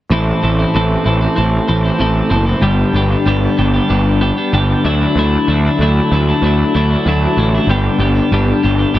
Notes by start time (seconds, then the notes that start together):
0.10 A1 A2 E3 C4 E4 A4
0.42 A1 E3 C4 E4 A4
0.58 C4 E4 A4
0.74 A1 A2 E3 C4 E4 A4
1.04 A1 E3 C4 E4 A4
1.21 C4 E4 A4
1.35 A1 E3 C4 E4 A4
1.68 A1 E3 C4 E4 A4
1.83 C4 E4 A4
1.99 A1 A2 E3 C4 E4 A4
2.29 F#1 E3 C4 E4 A4
2.46 C4 E4 A4
2.61 G1 G2 D3 G3 B3 D4 G4
2.93 G1 G3 B3 D4 G4
3.10 G3 B3 D4 G4
3.26 G1 G2 D3 G3 B3 D4 G4
3.57 G1 G3 B3 D4 G4
3.73 G3 B3 D4 G4
3.88 G1 G3 B3 D4 G4
4.21 G3 B3 D4 G4
4.37 G3 B3 D4 G4
4.53 G1 G2 D3 G3 B3 D4 G4
4.84 D2 D3 F#3 A3 D4 E4
5.00 A3 D4 E4
5.15 D2 D3 F#3 A3 D4 E4
5.47 D2 F#3 A3 D4 E4
5.65 A3 D4 E4
5.79 D2 D3 F#3 A3 D4 E4
6.11 D2 F#3 A3 D4 E4
6.27 A3 D4 E4
6.42 D2 F#3 A3 D4
6.46 E4
6.75 D2 F#3 A3 D4 E4
6.90 A3 D4 E4
7.06 D2 D3 F#3 A3 D4 E4
7.37 A1 F#3 A3 D4 E4
7.54 A3 D4 E4
7.67 G1 G2 D3 G3 B3
7.71 D4 G4
7.98 G1 G3 B3 D4 G4
8.15 G3 B3 D4 G4
8.31 G1 G2 D3 G3 B3 D4 G4
8.63 G1 G3 B3 D4 G4
8.78 G3 B3 D4 G4
8.94 G1 G3 B3 D4